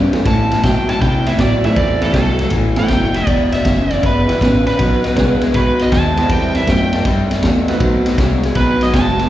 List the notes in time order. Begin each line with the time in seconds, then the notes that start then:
Already playing: E2 G2 C#3
0.13 E2 C#3 E3 A3 C4 E4 A4, muted fingered electric bass stroke, snare, ride
0.25 A2 E3 A5, kick, snare, ride
0.51 A2 E3, snare, ride
0.63 A2 B2 F#3 G5, kick, snare, ride
0.89 A2 F#3 A5, snare, ride
1.01 A2 C3 E3 G5, kick, snare, ride
1.26 A2 E3 E5, snare, ride
1.38 A2 F#3 D5, kick, snare, ride
1.64 A2 E3 F#3 A3 C4 E4 A4 E5, snare, ride
1.76 E2 A2 E3 D5, kick, ride
2.02 A2 E3 A4, snare, ride
2.13 C2 A2 F#3 A4, kick, snare, ride
2.39 A2 F#3, snare, ride
2.50 A1 A2 E3, kick, snare, ride
2.76 A2 E3 A3 C4 E4 A4 G5, snare, ride
2.88 F#1 A2 F#3, kick, snare, ride
3.14 A2 F#3 E5, snare, ride
3.27 E1 E2 B2 D5, kick, ride
3.52 E2 B2 E5, snare, ride
3.65 F#1 E2 C#3, kick, snare, ride
3.91 E2 C#3 D5, snare, ride
4.03 G1 E2 B2 B4, kick, snare, ride
4.28 E2 B2 G3 B3 E4 G4 B4, snare, ride
4.41 A1 E2 C#3, kick, snare, ride
4.66 E2 C#3 B4, snare, ride
4.78 B1 B2 F#3, kick, snare, ride
5.04 B2 F#3, snare, ride
5.16 C2 B2 G#3, kick, snare, ride
5.41 B2 G#3, muted fingered electric bass stroke, snare, ride
5.54 B1 B2 F#3 B4, kick, snare, ride
5.79 B2 F#3 D#5, snare, ride
5.92 D#2 B2 G#3 A5, kick, snare, ride
6.17 B2 G#3 B3 C4 E4 G4 B4, snare, ride
6.29 E2 C3 G3 G5, kick, ride
6.55 C3 G3 E5, snare, ride
6.67 F#2 C3 A3 G5, kick, snare, ride
6.93 C3 A3, snare, ride
7.05 G2 C3 G3, kick, snare, ride
7.31 C3 G3, snare, ride
7.42 E2 C3 A3, kick, snare, ride
7.68 C3 A3 C4 D#4 F#4 B4, snare, ride
7.80 B1 B2 F#3, kick, ride
8.06 B2 F#3, snare, ride
8.18 C2 B2 G#3, kick, snare, ride
8.43 B2 G#3, snare, ride
8.55 B1 B2 F#3 B4, kick, snare, ride
8.81 B2 F#3 D#5, snare, ride
8.93 F#1 B2 G#3 A5, kick, snare, ride
9.19 B2 G#3, snare, ride